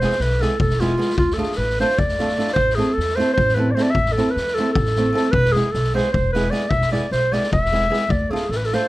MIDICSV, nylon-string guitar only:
0, 0, Header, 1, 2, 480
1, 0, Start_track
1, 0, Tempo, 394737
1, 1430, Time_signature, 7, 3, 24, 8
1, 10799, End_track
2, 0, Start_track
2, 0, Title_t, "Nylon-string guitar"
2, 0, Program_c, 0, 24
2, 19, Note_on_c, 0, 56, 58
2, 23, Note_on_c, 0, 59, 49
2, 33, Note_on_c, 0, 64, 54
2, 50, Note_on_c, 0, 68, 60
2, 172, Note_off_c, 0, 56, 0
2, 173, Note_off_c, 0, 59, 0
2, 179, Note_off_c, 0, 64, 0
2, 187, Note_off_c, 0, 68, 0
2, 486, Note_on_c, 0, 56, 50
2, 502, Note_on_c, 0, 59, 55
2, 512, Note_on_c, 0, 64, 52
2, 520, Note_on_c, 0, 68, 65
2, 651, Note_off_c, 0, 56, 0
2, 659, Note_off_c, 0, 59, 0
2, 664, Note_off_c, 0, 64, 0
2, 668, Note_off_c, 0, 68, 0
2, 978, Note_on_c, 0, 56, 55
2, 981, Note_on_c, 0, 59, 52
2, 997, Note_on_c, 0, 64, 55
2, 1003, Note_on_c, 0, 68, 66
2, 1132, Note_off_c, 0, 56, 0
2, 1132, Note_off_c, 0, 59, 0
2, 1142, Note_off_c, 0, 64, 0
2, 1143, Note_off_c, 0, 68, 0
2, 1184, Note_on_c, 0, 56, 53
2, 1193, Note_on_c, 0, 59, 60
2, 1202, Note_on_c, 0, 64, 48
2, 1208, Note_on_c, 0, 68, 66
2, 1347, Note_off_c, 0, 56, 0
2, 1349, Note_off_c, 0, 59, 0
2, 1355, Note_off_c, 0, 64, 0
2, 1359, Note_off_c, 0, 68, 0
2, 1668, Note_on_c, 0, 57, 56
2, 1679, Note_on_c, 0, 62, 53
2, 1686, Note_on_c, 0, 65, 50
2, 1691, Note_on_c, 0, 69, 64
2, 1836, Note_off_c, 0, 57, 0
2, 1842, Note_off_c, 0, 62, 0
2, 1844, Note_off_c, 0, 65, 0
2, 1847, Note_off_c, 0, 69, 0
2, 2187, Note_on_c, 0, 57, 55
2, 2187, Note_on_c, 0, 62, 51
2, 2191, Note_on_c, 0, 65, 53
2, 2197, Note_on_c, 0, 69, 56
2, 2341, Note_off_c, 0, 62, 0
2, 2342, Note_off_c, 0, 57, 0
2, 2344, Note_off_c, 0, 65, 0
2, 2346, Note_off_c, 0, 69, 0
2, 2661, Note_on_c, 0, 57, 63
2, 2674, Note_on_c, 0, 65, 49
2, 2675, Note_on_c, 0, 62, 50
2, 2694, Note_on_c, 0, 69, 59
2, 2813, Note_off_c, 0, 57, 0
2, 2819, Note_off_c, 0, 65, 0
2, 2821, Note_off_c, 0, 62, 0
2, 2830, Note_off_c, 0, 69, 0
2, 2890, Note_on_c, 0, 57, 54
2, 2898, Note_on_c, 0, 62, 50
2, 2909, Note_on_c, 0, 65, 47
2, 2911, Note_on_c, 0, 69, 56
2, 3040, Note_off_c, 0, 57, 0
2, 3041, Note_off_c, 0, 62, 0
2, 3048, Note_off_c, 0, 69, 0
2, 3050, Note_off_c, 0, 65, 0
2, 3368, Note_on_c, 0, 57, 53
2, 3375, Note_on_c, 0, 64, 48
2, 3378, Note_on_c, 0, 60, 52
2, 3390, Note_on_c, 0, 69, 68
2, 3526, Note_off_c, 0, 57, 0
2, 3529, Note_off_c, 0, 64, 0
2, 3531, Note_off_c, 0, 60, 0
2, 3537, Note_off_c, 0, 69, 0
2, 3854, Note_on_c, 0, 57, 60
2, 3860, Note_on_c, 0, 60, 52
2, 3878, Note_on_c, 0, 64, 55
2, 3890, Note_on_c, 0, 69, 59
2, 4016, Note_off_c, 0, 57, 0
2, 4017, Note_off_c, 0, 60, 0
2, 4027, Note_off_c, 0, 64, 0
2, 4033, Note_off_c, 0, 69, 0
2, 4328, Note_on_c, 0, 57, 61
2, 4339, Note_on_c, 0, 60, 54
2, 4353, Note_on_c, 0, 64, 50
2, 4360, Note_on_c, 0, 69, 59
2, 4487, Note_off_c, 0, 57, 0
2, 4492, Note_off_c, 0, 60, 0
2, 4500, Note_off_c, 0, 64, 0
2, 4502, Note_off_c, 0, 69, 0
2, 4580, Note_on_c, 0, 57, 57
2, 4586, Note_on_c, 0, 60, 59
2, 4602, Note_on_c, 0, 64, 54
2, 4612, Note_on_c, 0, 69, 57
2, 4725, Note_off_c, 0, 57, 0
2, 4728, Note_off_c, 0, 60, 0
2, 4736, Note_off_c, 0, 64, 0
2, 4741, Note_off_c, 0, 69, 0
2, 5077, Note_on_c, 0, 57, 55
2, 5079, Note_on_c, 0, 60, 59
2, 5088, Note_on_c, 0, 64, 57
2, 5093, Note_on_c, 0, 69, 60
2, 5220, Note_off_c, 0, 60, 0
2, 5221, Note_off_c, 0, 57, 0
2, 5226, Note_off_c, 0, 64, 0
2, 5229, Note_off_c, 0, 69, 0
2, 5573, Note_on_c, 0, 57, 62
2, 5582, Note_on_c, 0, 60, 50
2, 5589, Note_on_c, 0, 64, 54
2, 5601, Note_on_c, 0, 69, 64
2, 5715, Note_off_c, 0, 57, 0
2, 5720, Note_off_c, 0, 60, 0
2, 5722, Note_off_c, 0, 64, 0
2, 5729, Note_off_c, 0, 69, 0
2, 6045, Note_on_c, 0, 57, 57
2, 6054, Note_on_c, 0, 60, 52
2, 6067, Note_on_c, 0, 64, 55
2, 6079, Note_on_c, 0, 69, 62
2, 6187, Note_off_c, 0, 57, 0
2, 6188, Note_off_c, 0, 60, 0
2, 6197, Note_off_c, 0, 64, 0
2, 6203, Note_off_c, 0, 69, 0
2, 6233, Note_on_c, 0, 57, 59
2, 6250, Note_on_c, 0, 60, 55
2, 6259, Note_on_c, 0, 64, 51
2, 6267, Note_on_c, 0, 69, 75
2, 6392, Note_off_c, 0, 57, 0
2, 6400, Note_off_c, 0, 60, 0
2, 6405, Note_off_c, 0, 64, 0
2, 6408, Note_off_c, 0, 69, 0
2, 6749, Note_on_c, 0, 56, 60
2, 6757, Note_on_c, 0, 59, 50
2, 6757, Note_on_c, 0, 64, 56
2, 6775, Note_on_c, 0, 68, 57
2, 6897, Note_off_c, 0, 56, 0
2, 6900, Note_off_c, 0, 64, 0
2, 6901, Note_off_c, 0, 59, 0
2, 6910, Note_off_c, 0, 68, 0
2, 7224, Note_on_c, 0, 56, 61
2, 7230, Note_on_c, 0, 59, 54
2, 7233, Note_on_c, 0, 64, 54
2, 7254, Note_on_c, 0, 68, 62
2, 7382, Note_off_c, 0, 56, 0
2, 7383, Note_off_c, 0, 59, 0
2, 7385, Note_off_c, 0, 64, 0
2, 7396, Note_off_c, 0, 68, 0
2, 7719, Note_on_c, 0, 56, 65
2, 7726, Note_on_c, 0, 59, 50
2, 7733, Note_on_c, 0, 64, 57
2, 7736, Note_on_c, 0, 68, 67
2, 7864, Note_off_c, 0, 56, 0
2, 7866, Note_off_c, 0, 59, 0
2, 7870, Note_off_c, 0, 68, 0
2, 7871, Note_off_c, 0, 64, 0
2, 7923, Note_on_c, 0, 56, 54
2, 7932, Note_on_c, 0, 59, 53
2, 7937, Note_on_c, 0, 68, 65
2, 7943, Note_on_c, 0, 64, 60
2, 8077, Note_off_c, 0, 56, 0
2, 8081, Note_off_c, 0, 59, 0
2, 8084, Note_off_c, 0, 68, 0
2, 8087, Note_off_c, 0, 64, 0
2, 8401, Note_on_c, 0, 56, 55
2, 8420, Note_on_c, 0, 59, 50
2, 8421, Note_on_c, 0, 64, 56
2, 8433, Note_on_c, 0, 68, 68
2, 8563, Note_off_c, 0, 56, 0
2, 8572, Note_off_c, 0, 64, 0
2, 8573, Note_off_c, 0, 59, 0
2, 8579, Note_off_c, 0, 68, 0
2, 8898, Note_on_c, 0, 56, 55
2, 8912, Note_on_c, 0, 59, 53
2, 8917, Note_on_c, 0, 64, 50
2, 8919, Note_on_c, 0, 68, 64
2, 9058, Note_off_c, 0, 56, 0
2, 9066, Note_off_c, 0, 59, 0
2, 9066, Note_off_c, 0, 64, 0
2, 9069, Note_off_c, 0, 68, 0
2, 9390, Note_on_c, 0, 56, 58
2, 9396, Note_on_c, 0, 59, 46
2, 9402, Note_on_c, 0, 64, 49
2, 9417, Note_on_c, 0, 68, 55
2, 9539, Note_off_c, 0, 56, 0
2, 9541, Note_off_c, 0, 59, 0
2, 9545, Note_off_c, 0, 64, 0
2, 9553, Note_off_c, 0, 68, 0
2, 9607, Note_on_c, 0, 59, 51
2, 9613, Note_on_c, 0, 56, 56
2, 9619, Note_on_c, 0, 64, 50
2, 9624, Note_on_c, 0, 68, 66
2, 9759, Note_off_c, 0, 59, 0
2, 9763, Note_off_c, 0, 56, 0
2, 9763, Note_off_c, 0, 64, 0
2, 9768, Note_off_c, 0, 68, 0
2, 10100, Note_on_c, 0, 57, 61
2, 10110, Note_on_c, 0, 62, 57
2, 10129, Note_on_c, 0, 65, 54
2, 10129, Note_on_c, 0, 69, 65
2, 10253, Note_off_c, 0, 57, 0
2, 10258, Note_off_c, 0, 62, 0
2, 10267, Note_off_c, 0, 69, 0
2, 10268, Note_off_c, 0, 65, 0
2, 10612, Note_on_c, 0, 57, 49
2, 10619, Note_on_c, 0, 65, 56
2, 10620, Note_on_c, 0, 62, 54
2, 10632, Note_on_c, 0, 69, 56
2, 10756, Note_off_c, 0, 57, 0
2, 10757, Note_off_c, 0, 65, 0
2, 10759, Note_off_c, 0, 62, 0
2, 10765, Note_off_c, 0, 69, 0
2, 10799, End_track
0, 0, End_of_file